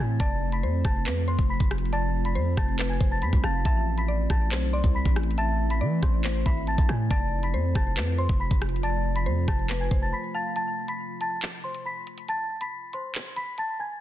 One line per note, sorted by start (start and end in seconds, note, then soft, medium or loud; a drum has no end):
0.00 0.19 A2 loud
0.00 0.16 E3 medium
0.00 3.61 A3 medium
0.00 7.07 C4 medium
0.00 0.16 E4 medium
0.00 0.18 G#5 medium
0.00 0.18 G#6 medium
0.20 0.65 F1 loud
0.20 3.62 F3 medium
0.20 3.62 F4 medium
0.20 0.61 D5 loud
0.20 0.50 A5 loud
0.20 0.51 A6 medium
0.20 kick loud
0.20 closed hi-hat medium
0.52 0.83 B5 medium
0.52 0.83 B6 medium
0.52 closed hi-hat medium
0.63 0.84 F2 loud
0.63 1.04 C5 medium
0.85 1.08 F1 loud
0.85 1.04 A5 medium
0.85 1.05 A6 medium
0.85 kick loud
0.85 cross-stick loud
0.85 closed hi-hat medium
1.06 1.37 F2 loud
1.06 1.27 B4 medium
1.06 clap loud
1.06 closed hi-hat medium
1.28 1.48 C5 medium
1.28 1.48 C6 medium
1.39 1.59 F1 loud
1.39 kick medium
1.39 closed hi-hat medium
1.50 1.69 B5 medium
1.50 1.70 B6 medium
1.60 2.37 F1 loud
1.60 kick medium
1.71 cross-stick loud
1.71 closed hi-hat medium
1.78 closed hi-hat medium
1.86 closed hi-hat soft
1.93 2.33 D5 medium
1.93 2.23 A5 loud
1.93 2.23 A6 medium
1.93 closed hi-hat medium
2.25 2.55 B5 medium
2.25 2.56 B6 medium
2.25 closed hi-hat medium
2.35 2.56 F2 loud
2.35 2.76 C5 medium
2.57 2.99 F1 loud
2.57 2.88 A5 medium
2.57 2.88 A6 medium
2.57 kick loud
2.57 cross-stick loud
2.57 closed hi-hat medium
2.79 2.99 B4 medium
2.79 clap loud
2.79 closed hi-hat medium
2.86 3.09 G#5 medium
2.86 closed hi-hat medium
2.90 3.10 G#6 medium
2.90 closed hi-hat soft
3.00 3.24 F1 loud
3.00 3.41 C5 medium
3.00 kick loud
3.00 closed hi-hat medium
3.11 3.21 A5 medium
3.11 3.22 A6 medium
3.22 3.32 F2 loud
3.22 3.42 B5 medium
3.22 3.42 B6 medium
3.22 closed hi-hat medium
3.33 3.43 C2 loud
3.33 kick medium
3.44 3.64 F1 loud
3.44 3.64 F5 medium
3.44 3.64 A5 medium
3.44 3.64 A6 medium
3.44 cross-stick loud
3.65 4.27 A1 loud
3.65 7.07 E3 medium
3.65 10.52 A3 medium
3.65 7.07 E4 medium
3.65 4.06 E5 medium
3.65 3.96 A5 loud
3.65 3.96 A6 medium
3.65 kick loud
3.65 closed hi-hat medium
3.98 4.28 B5 medium
3.98 4.28 B6 medium
3.98 closed hi-hat medium
4.08 4.49 D5 medium
4.30 4.53 A1 loud
4.30 4.50 A5 medium
4.30 4.50 A6 medium
4.30 kick loud
4.30 cross-stick loud
4.30 closed hi-hat medium
4.51 4.82 B1 loud
4.51 4.72 C5 medium
4.51 clap loud
4.51 closed hi-hat medium
4.73 4.93 C5 medium
4.73 4.94 D5 medium
4.73 4.93 C6 medium
4.84 5.05 C2 loud
4.84 kick medium
4.84 closed hi-hat medium
4.95 5.15 B5 medium
4.95 5.15 B6 medium
5.05 5.82 A1 loud
5.05 kick medium
5.16 cross-stick loud
5.16 closed hi-hat medium
5.23 closed hi-hat medium
5.31 closed hi-hat soft
5.38 5.78 E5 loud
5.38 5.68 A5 loud
5.38 5.69 A6 medium
5.38 closed hi-hat medium
5.70 6.01 B5 medium
5.70 6.01 B6 medium
5.70 closed hi-hat medium
5.81 6.02 E3 loud
5.81 6.22 D5 medium
6.03 6.44 A1 loud
6.03 6.44 C5 medium
6.03 6.43 C6 medium
6.03 kick loud
6.03 cross-stick medium
6.03 closed hi-hat medium
6.24 6.45 C5 medium
6.24 clap loud
6.24 closed hi-hat medium
6.46 6.77 G#1 loud
6.46 6.66 E5 medium
6.46 6.66 B5 loud
6.46 6.66 B6 medium
6.46 kick medium
6.46 closed hi-hat medium
6.67 6.87 A5 medium
6.67 6.88 A6 medium
6.67 closed hi-hat medium
6.78 6.89 A1 loud
6.78 kick medium
6.89 7.10 A2 loud
6.89 7.09 G#5 medium
6.89 7.09 G#6 medium
6.89 cross-stick loud
7.10 7.55 F1 loud
7.10 10.53 C3 medium
7.10 10.53 F3 medium
7.10 10.53 F4 medium
7.10 7.51 D5 loud
7.10 7.41 A5 loud
7.10 7.41 A6 medium
7.10 kick loud
7.10 closed hi-hat medium
7.43 7.73 B5 medium
7.43 7.74 B6 medium
7.43 closed hi-hat medium
7.54 7.74 F2 loud
7.54 7.94 C5 medium
7.75 7.98 F1 loud
7.75 7.95 A5 medium
7.75 7.95 A6 medium
7.75 kick medium
7.75 cross-stick loud
7.75 closed hi-hat medium
7.97 8.28 F2 loud
7.97 8.17 B4 medium
7.97 clap loud
7.97 closed hi-hat medium
8.18 8.39 C5 medium
8.18 8.38 C6 medium
8.29 8.50 F1 loud
8.29 kick medium
8.29 closed hi-hat medium
8.40 8.60 B5 medium
8.40 8.60 B6 medium
8.51 9.28 F1 loud
8.51 kick medium
8.62 cross-stick loud
8.62 closed hi-hat medium
8.69 closed hi-hat medium
8.76 closed hi-hat soft
8.83 9.24 D5 medium
8.83 9.14 A5 loud
8.83 9.14 A6 medium
8.83 closed hi-hat medium
9.16 9.46 B5 medium
9.16 9.46 B6 medium
9.16 closed hi-hat medium
9.26 9.47 F2 loud
9.26 9.67 C5 medium
9.48 9.89 F1 loud
9.48 9.78 A5 medium
9.48 9.79 A6 medium
9.48 kick loud
9.48 cross-stick loud
9.48 closed hi-hat medium
9.70 9.90 B4 medium
9.70 clap loud
9.70 closed hi-hat medium
9.77 10.00 G#5 medium
9.77 closed hi-hat medium
9.81 10.00 G#6 medium
9.81 closed hi-hat soft
9.91 10.13 F1 loud
9.91 10.32 C5 medium
9.91 kick loud
9.91 closed hi-hat medium
10.02 10.12 A5 medium
10.02 10.12 A6 medium
10.13 10.32 B5 medium
10.13 10.33 B6 medium
10.35 10.55 F5 medium
10.35 10.54 A5 medium
10.35 10.55 A6 medium
10.56 10.86 A5 loud
10.56 10.87 A6 medium
10.56 closed hi-hat medium
10.88 11.19 B5 medium
10.88 11.19 B6 medium
10.88 closed hi-hat medium
11.21 11.41 A5 medium
11.21 11.41 A6 medium
11.21 closed hi-hat medium
11.42 clap loud
11.42 closed hi-hat medium
11.64 11.84 C5 medium
11.64 11.84 C6 medium
11.75 closed hi-hat medium
11.86 12.05 B5 medium
11.86 12.06 B6 medium
12.07 closed hi-hat medium
12.18 closed hi-hat medium
12.29 12.59 A5 loud
12.29 12.60 A6 medium
12.29 closed hi-hat medium
12.61 12.91 B5 medium
12.61 12.92 B6 medium
12.61 closed hi-hat medium
12.93 13.34 C5 medium
12.93 13.34 C6 medium
12.93 closed hi-hat medium
13.15 clap loud
13.15 closed hi-hat medium
13.36 13.56 B5 medium
13.36 13.57 B6 medium
13.36 closed hi-hat medium
13.58 13.78 A5 medium
13.58 13.78 A6 medium
13.58 closed hi-hat medium
13.80 13.99 G#5 medium
13.80 14.00 G#6 medium